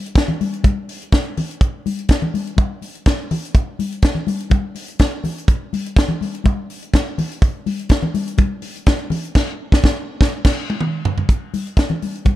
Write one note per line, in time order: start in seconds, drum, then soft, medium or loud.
0.06 closed hi-hat soft
0.15 kick loud
0.15 snare loud
0.15 closed hi-hat medium
0.15 muted conga soft
0.28 low conga medium
0.41 open hi-hat soft
0.41 muted conga soft
0.41 high conga medium
0.54 closed hi-hat soft
0.64 kick loud
0.64 closed hi-hat medium
0.64 muted conga soft
0.64 high conga medium
0.89 open hi-hat medium
1.02 closed hi-hat soft
1.12 kick loud
1.12 snare medium
1.12 closed hi-hat medium
1.37 open hi-hat medium
1.37 low conga medium
1.51 closed hi-hat soft
1.61 kick loud
1.61 closed hi-hat medium
1.86 open hi-hat medium
1.86 high conga medium
1.99 closed hi-hat soft
2.08 kick loud
2.08 snare loud
2.08 closed hi-hat medium
2.22 low conga medium
2.34 open hi-hat medium
2.34 high conga medium
2.47 closed hi-hat medium
2.57 kick loud
2.57 closed hi-hat medium
2.57 high conga medium
2.82 open hi-hat medium
2.82 muted conga soft
2.95 closed hi-hat soft
3.06 kick loud
3.06 snare loud
3.06 closed hi-hat medium
3.31 open hi-hat medium
3.31 low conga medium
3.45 closed hi-hat soft
3.55 kick loud
3.55 closed hi-hat medium
3.55 muted conga soft
3.79 open hi-hat medium
3.79 high conga medium
3.92 closed hi-hat soft
4.02 kick loud
4.02 snare loud
4.02 closed hi-hat medium
4.15 low conga medium
4.27 open hi-hat medium
4.27 muted conga soft
4.27 high conga medium
4.40 closed hi-hat medium
4.50 kick loud
4.50 closed hi-hat soft
4.50 high conga medium
4.75 open hi-hat medium
4.75 muted conga soft
4.88 closed hi-hat soft
4.99 kick loud
4.99 snare loud
4.99 closed hi-hat medium
4.99 muted conga soft
5.24 open hi-hat medium
5.24 muted conga soft
5.24 low conga medium
5.38 closed hi-hat soft
5.48 kick loud
5.48 closed hi-hat medium
5.48 muted conga soft
5.73 open hi-hat medium
5.73 muted conga soft
5.73 high conga medium
5.86 closed hi-hat medium
5.96 kick loud
5.96 snare loud
5.96 closed hi-hat medium
6.09 low conga medium
6.21 open hi-hat medium
6.21 high conga medium
6.35 closed hi-hat soft
6.44 kick loud
6.44 closed hi-hat soft
6.44 muted conga soft
6.44 high conga medium
6.70 open hi-hat medium
6.82 closed hi-hat soft
6.93 kick loud
6.93 snare loud
6.93 closed hi-hat medium
6.93 muted conga soft
7.18 open hi-hat medium
7.18 muted conga soft
7.18 low conga medium
7.32 closed hi-hat medium
7.42 kick loud
7.42 closed hi-hat medium
7.66 open hi-hat medium
7.66 muted conga soft
7.66 high conga medium
7.79 closed hi-hat soft
7.89 kick loud
7.89 snare loud
7.89 closed hi-hat medium
7.89 muted conga soft
8.02 low conga medium
8.14 open hi-hat medium
8.14 high conga medium
8.27 closed hi-hat medium
8.38 kick loud
8.38 closed hi-hat medium
8.38 muted conga soft
8.38 high conga medium
8.62 open hi-hat medium
8.62 muted conga soft
8.76 closed hi-hat soft
8.86 kick loud
8.86 snare loud
8.86 closed hi-hat medium
8.86 muted conga soft
9.10 open hi-hat medium
9.10 muted conga soft
9.10 low conga medium
9.25 closed hi-hat soft
9.35 kick loud
9.35 snare loud
9.35 crash medium
9.72 kick loud
9.72 snare loud
9.84 kick loud
9.84 snare loud
10.21 kick loud
10.21 snare loud
10.45 kick loud
10.45 snare loud
10.45 crash medium
10.70 high tom medium
10.81 mid tom medium
11.05 floor tom loud
11.18 floor tom medium
11.29 kick loud
11.29 closed hi-hat medium
11.29 muted conga soft
11.54 open hi-hat medium
11.54 muted conga soft
11.54 high conga medium
11.67 closed hi-hat soft
11.77 kick loud
11.77 snare loud
11.77 closed hi-hat medium
11.90 low conga medium
12.02 open hi-hat soft
12.02 high conga medium
12.15 closed hi-hat soft
12.25 kick medium
12.25 closed hi-hat soft
12.25 muted conga soft
12.25 high conga medium